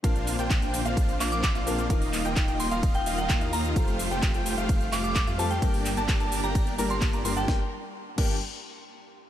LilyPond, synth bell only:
\new Staff \with { instrumentName = "Synth bell" } { \time 4/4 \key g \minor \tempo 4 = 129 r2 r8 d'''16 d'''16 d'''16 r8. | r4. c'''16 c'''16 r16 g''16 r16 g''16 r8 bes''8 | r2 r8 d'''16 d'''16 d'''16 r16 a''16 g''16 | r4. r16 bes''16 r8. c'''16 r8 c'''16 g''16 |
r1 | }